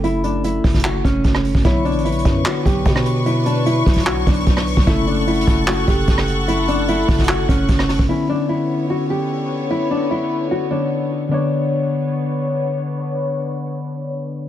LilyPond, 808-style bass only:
\new Staff \with { instrumentName = "808-style bass" } { \clef bass \time 4/4 \key b \minor \tempo 4 = 149 fis,,4. fis,,4 fis,,8 fis,,8. fis,,16 | b,,8. a,,16. b,,16. fis,8 r8 b,,8 b,4~ | b,4. b,,4 b,,8 b,,8. b,,16 | fis,,4. fis,,4 fis,,8 fis,,4~ |
fis,,4. fis,,4 fis,,8 fis,,8. fis,,16 | r1 | r1 | r1 |
r1 | }